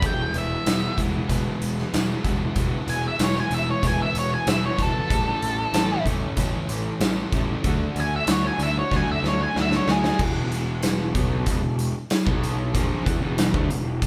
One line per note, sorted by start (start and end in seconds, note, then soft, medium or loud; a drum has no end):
0.01 0.24 E1 medium
0.01 0.65 E3 medium
0.01 0.66 G#3 medium
0.01 0.67 B3 medium
0.01 0.67 E4 medium
0.01 kick loud
0.01 closed hi-hat medium
0.06 0.35 G5 medium
0.34 0.56 E1 medium
0.34 closed hi-hat medium
0.38 0.98 E5 loud
0.66 0.88 E1 medium
0.66 0.97 E3 medium
0.66 0.98 G#3 medium
0.66 0.99 B3 medium
0.66 0.99 E4 medium
0.66 snare loud
0.66 closed hi-hat medium
0.66 tambourine loud
0.98 1.19 E1 medium
0.98 1.28 E3 medium
0.98 1.28 G#3 medium
0.98 1.29 B3 medium
0.98 1.30 E4 medium
0.98 kick medium
0.98 closed hi-hat medium
1.29 1.51 E1 medium
1.29 1.92 E3 medium
1.29 1.92 G#3 medium
1.29 1.92 B3 medium
1.29 1.94 E4 medium
1.29 kick medium
1.29 closed hi-hat medium
1.62 1.83 E1 medium
1.62 closed hi-hat medium
1.78 snare soft
1.92 2.15 E1 medium
1.92 2.24 E3 medium
1.92 2.24 G#3 medium
1.92 2.24 B3 medium
1.92 2.25 E4 medium
1.92 snare loud
1.92 closed hi-hat medium
1.92 tambourine loud
2.24 2.46 E1 medium
2.24 2.55 E3 medium
2.24 2.55 G#3 medium
2.24 2.55 B3 medium
2.24 2.57 E4 medium
2.24 kick medium
2.24 closed hi-hat medium
2.55 2.77 E1 medium
2.55 3.18 E3 medium
2.55 3.18 G#3 medium
2.55 3.19 B3 loud
2.55 3.20 E4 loud
2.55 kick loud
2.55 closed hi-hat medium
2.87 3.09 E1 medium
2.87 3.04 G#5 loud
2.87 closed hi-hat medium
3.08 3.21 E5 medium
3.19 3.41 E1 medium
3.19 3.51 E3 medium
3.19 3.50 G#3 medium
3.19 3.51 B3 medium
3.19 3.52 E4 medium
3.19 snare loud
3.19 closed hi-hat medium
3.19 tambourine loud
3.24 3.37 C#5 loud
3.36 3.53 G#5 loud
3.36 snare soft
3.50 3.73 E1 medium
3.50 3.80 E3 medium
3.50 3.81 G#3 medium
3.50 3.82 B3 medium
3.50 3.82 E4 medium
3.50 3.68 E5 medium
3.50 closed hi-hat medium
3.71 3.84 C#5 loud
3.82 4.05 E1 medium
3.82 4.45 E3 medium
3.82 4.46 G#3 medium
3.82 4.46 B3 loud
3.82 4.46 E4 medium
3.82 kick medium
3.82 closed hi-hat medium
3.87 4.01 G#5 loud
4.02 4.16 E5 medium
4.15 4.36 E1 medium
4.15 closed hi-hat medium
4.19 4.32 C#5 medium
4.34 4.48 G#5 loud
4.46 4.69 E1 medium
4.46 4.76 E3 medium
4.46 4.77 G#3 medium
4.46 4.78 B3 medium
4.46 4.78 E4 loud
4.46 4.63 E5 loud
4.46 snare loud
4.46 closed hi-hat loud
4.46 tambourine loud
4.66 4.79 C#5 loud
4.78 5.00 E1 medium
4.78 5.08 E3 medium
4.78 5.08 G#3 medium
4.78 5.08 B3 loud
4.78 5.09 E4 medium
4.78 kick medium
4.78 closed hi-hat medium
4.82 6.04 A4 loud
5.08 5.32 A1 medium
5.08 5.71 A2 medium
5.08 5.72 E3 medium
5.08 5.73 A3 loud
5.08 5.73 C#4 loud
5.08 5.73 E4 loud
5.08 kick loud
5.08 closed hi-hat medium
5.42 5.64 A1 medium
5.42 closed hi-hat medium
5.72 5.95 A1 medium
5.72 6.03 A2 medium
5.72 6.04 E3 medium
5.72 6.06 A3 medium
5.72 6.05 C#4 medium
5.72 6.05 E4 medium
5.72 snare loud
5.72 closed hi-hat loud
5.72 tambourine loud
6.05 6.27 A1 medium
6.05 6.36 A2 medium
6.05 6.37 E3 medium
6.05 6.38 A3 medium
6.05 6.38 C#4 medium
6.05 6.39 E4 medium
6.05 kick medium
6.05 closed hi-hat medium
6.37 6.59 A1 medium
6.37 6.99 A2 medium
6.37 7.00 E3 loud
6.37 7.01 A3 loud
6.37 7.01 C#4 loud
6.37 7.02 E4 loud
6.37 kick medium
6.37 closed hi-hat medium
6.69 6.91 A1 medium
6.69 closed hi-hat medium
7.00 7.22 A1 medium
7.00 7.31 A2 medium
7.00 7.32 E3 medium
7.00 7.32 A3 loud
7.00 7.33 C#4 medium
7.00 7.33 E4 medium
7.00 snare loud
7.00 closed hi-hat medium
7.00 tambourine loud
7.32 7.54 A1 medium
7.32 7.62 A2 medium
7.32 7.63 E3 medium
7.32 7.63 A3 medium
7.32 7.63 C#4 medium
7.32 7.63 E4 medium
7.32 kick loud
7.32 closed hi-hat medium
7.64 7.86 D2 medium
7.64 8.26 D3 loud
7.64 8.27 A3 medium
7.64 8.28 D4 loud
7.64 8.28 F#4 loud
7.64 kick loud
7.64 closed hi-hat medium
7.96 8.18 D2 medium
7.96 closed hi-hat medium
8.00 8.14 G#5 loud
8.16 8.31 E5 medium
8.27 8.49 D2 medium
8.27 8.57 D3 medium
8.27 8.58 A3 medium
8.27 8.59 D4 medium
8.27 8.59 F#4 medium
8.27 snare loud
8.27 closed hi-hat loud
8.27 tambourine loud
8.31 8.45 C#5 medium
8.47 8.61 G#5 loud
8.58 8.81 D2 medium
8.58 8.90 D3 medium
8.58 8.90 A3 medium
8.58 8.91 D4 medium
8.58 8.91 F#4 medium
8.58 closed hi-hat medium
8.63 8.77 E5 medium
8.79 8.93 C#5 loud
8.91 9.14 D2 medium
8.91 9.53 D3 loud
8.91 9.54 A3 medium
8.91 9.54 D4 loud
8.91 9.55 F#4 loud
8.91 kick medium
8.91 snare medium
8.96 9.10 G#5 loud
9.12 9.25 E5 medium
9.23 9.45 D2 medium
9.23 snare medium
9.28 9.41 C#5 medium
9.43 9.57 G#5 loud
9.54 9.78 D2 medium
9.54 9.86 D3 medium
9.54 9.86 A3 medium
9.54 9.87 D4 medium
9.54 9.87 F#4 loud
9.54 snare medium
9.61 9.74 E5 loud
9.72 snare medium
9.76 9.89 C#5 medium
9.87 10.09 D2 medium
9.87 10.17 D3 medium
9.87 10.17 A3 medium
9.87 10.18 D4 medium
9.87 10.18 F#4 loud
9.87 snare loud
9.91 10.20 G#4 loud
10.04 snare loud
10.19 11.11 E1 medium
10.19 11.14 E2 medium
10.19 11.13 B2 medium
10.19 11.14 E3 medium
10.19 kick loud
10.19 crash loud
10.19 tambourine soft
10.52 closed hi-hat medium
10.52 tambourine soft
10.83 snare loud
10.83 closed hi-hat loud
10.83 tambourine loud
10.83 tambourine medium
11.14 11.44 B1 medium
11.14 11.46 B2 medium
11.14 11.46 F#3 medium
11.14 11.46 B3 medium
11.14 kick loud
11.14 closed hi-hat medium
11.14 tambourine medium
11.46 11.62 E1 loud
11.46 11.61 E2 medium
11.46 11.61 B2 medium
11.46 kick medium
11.46 closed hi-hat medium
11.46 tambourine medium
11.62 11.92 E1 medium
11.62 11.88 E2 medium
11.62 11.88 B2 medium
11.79 closed hi-hat medium
11.79 tambourine medium
12.10 snare loud
12.10 closed hi-hat medium
12.10 tambourine loud
12.12 tambourine loud
12.25 12.71 B1 loud
12.25 12.73 B2 medium
12.25 12.73 F#3 medium
12.25 12.73 B3 medium
12.25 kick loud
12.43 closed hi-hat medium
12.43 tambourine medium
12.74 13.04 A#1 medium
12.74 13.04 A#2 medium
12.74 13.05 F3 medium
12.74 13.05 A#3 loud
12.74 kick loud
12.74 closed hi-hat medium
12.74 tambourine soft
13.05 13.20 E2 medium
13.05 13.20 E3 medium
13.05 13.21 B3 medium
13.05 kick loud
13.05 closed hi-hat medium
13.05 tambourine soft
13.20 13.51 E1 medium
13.20 13.52 E2 medium
13.20 13.53 B2 medium
13.20 13.53 E3 loud
13.38 snare loud
13.38 closed hi-hat loud
13.38 tambourine loud
13.54 13.69 D2 loud
13.54 13.69 D3 medium
13.54 13.69 A3 medium
13.54 kick loud
13.70 13.99 E1 medium
13.70 13.95 E2 medium
13.70 13.95 B2 medium
13.70 closed hi-hat medium
13.70 tambourine medium
14.02 kick loud
14.02 closed hi-hat medium
14.02 tambourine medium